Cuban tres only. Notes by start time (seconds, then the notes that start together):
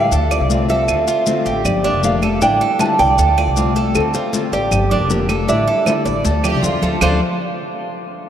Already playing: D5
0.12 A4
0.31 D5
0.70 A4
1.08 F4
1.46 G4
1.84 D4
2.23 A4
2.42 D4
2.61 A4
2.99 D5
3.19 A4
3.38 D5
3.76 A4
4.15 F4
4.53 G4
4.91 D4
5.29 A4
5.49 D4
5.68 A4
6.06 D5
6.25 A4
6.44 D5
6.83 A4
7.01 D4 A4 C5